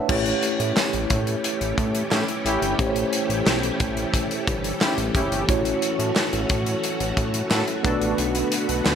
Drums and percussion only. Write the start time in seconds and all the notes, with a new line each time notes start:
0.09 kick, crash
0.26 closed hi-hat
0.43 closed hi-hat
0.60 closed hi-hat
0.76 snare, clap, tambourine
0.93 closed hi-hat
1.10 kick, closed hi-hat
1.27 closed hi-hat
1.44 closed hi-hat
1.61 closed hi-hat
1.78 kick, closed hi-hat
1.95 closed hi-hat
2.11 snare, clap, tambourine
2.28 closed hi-hat
2.46 closed hi-hat
2.62 closed hi-hat
2.79 kick, closed hi-hat
2.96 closed hi-hat
3.13 closed hi-hat
3.30 closed hi-hat
3.46 snare, clap, tambourine
3.63 closed hi-hat
3.80 kick, closed hi-hat
3.97 closed hi-hat
4.14 kick, closed hi-hat
4.31 closed hi-hat
4.47 kick, closed hi-hat
4.64 closed hi-hat
4.81 snare, clap, tambourine
4.98 closed hi-hat
5.15 kick, closed hi-hat
5.32 closed hi-hat
5.49 kick, closed hi-hat
5.65 closed hi-hat
5.82 closed hi-hat
6.00 closed hi-hat
6.16 snare, clap, tambourine
6.33 closed hi-hat
6.50 kick, closed hi-hat
6.66 closed hi-hat
6.84 closed hi-hat
7.00 closed hi-hat
7.17 kick, closed hi-hat
7.34 closed hi-hat
7.51 snare, clap, tambourine
7.68 closed hi-hat
7.85 kick, closed hi-hat
8.02 closed hi-hat
8.18 closed hi-hat
8.35 closed hi-hat
8.52 closed hi-hat
8.69 closed hi-hat
8.85 snare, clap, tambourine